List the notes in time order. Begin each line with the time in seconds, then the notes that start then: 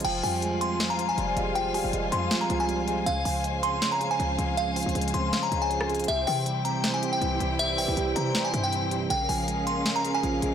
0.00 closed hi-hat
0.05 F1 F3 F4 C5 F5 G5 G#5, closed hi-hat, crash
0.23 F2 G3 G#5, open hi-hat
0.42 G#3, closed hi-hat
0.61 C4 C6, closed hi-hat
0.80 F4, snare, closed hi-hat
0.90 A#5
0.99 F3, closed hi-hat
1.09 G#5
1.18 F1 G3, closed hi-hat
1.37 F1 G#3, closed hi-hat
1.55 F3 G5, closed hi-hat
1.74 E1 G3 G#5, open hi-hat
1.84 F1
1.93 F1 G#3, closed hi-hat
2.12 F2 C4 C6, closed hi-hat
2.31 F4, snare, closed hi-hat
2.41 A#5
2.50 C2 F3, closed hi-hat
2.60 G#5
2.69 G3, closed hi-hat
2.88 G#3, closed hi-hat
3.06 C#2 C#3 F5, closed hi-hat
3.25 C#2 F3 G#5, open hi-hat
3.44 G#3, closed hi-hat
3.63 C4 C6, closed hi-hat
3.82 C#4, snare, closed hi-hat
3.92 A#5
4.01 C#3, closed hi-hat
4.11 G#5
4.20 C#2 F3, closed hi-hat
4.39 C#2 G#3, closed hi-hat
4.57 C#3 F5, closed hi-hat
4.76 F3 G#5, closed hi-hat, open hi-hat
4.83 C#2, closed hi-hat
4.89 closed hi-hat
4.95 C#2 G#3, closed hi-hat
5.01 closed hi-hat
5.08 closed hi-hat
5.14 C#2 C4 C6, closed hi-hat
5.33 C#4, snare, closed hi-hat
5.43 A#5
5.52 C#2 C#3, closed hi-hat
5.62 G#5
5.71 F3, closed hi-hat
5.81 cross-stick
5.89 G#3, closed hi-hat
5.95 closed hi-hat
6.00 closed hi-hat
6.04 closed hi-hat
6.08 C2 C3 E4 G4 E5 G5, closed hi-hat
6.27 C3 E3 G5, open hi-hat
6.46 G3, closed hi-hat
6.65 C4 A#5, closed hi-hat
6.84 C5, snare, closed hi-hat
6.94 G#5
7.03 C3, closed hi-hat
7.13 G5
7.22 C2 E3, closed hi-hat
7.40 C2 G3, closed hi-hat
7.59 C3 E5, closed hi-hat
7.78 A#1 E3 G5, open hi-hat
7.88 C2
7.97 C2 G3, closed hi-hat
8.16 C3 C4 A#5, closed hi-hat
8.35 C5, snare, closed hi-hat
8.45 G#5
8.54 G2 C3, closed hi-hat
8.64 G5
8.72 E3, closed hi-hat
8.91 G3, closed hi-hat
9.10 A#1 C#3 C#4 G#4 A#4 F5 G5, closed hi-hat
9.29 A#1 F3 G#5, open hi-hat
9.48 G#3, closed hi-hat
9.67 A#3 C6, closed hi-hat
9.86 C#4, snare, closed hi-hat
9.96 A#5
10.05 C#3, closed hi-hat
10.14 G#5
10.23 A#1 F3, closed hi-hat
10.42 A#1 G#3, closed hi-hat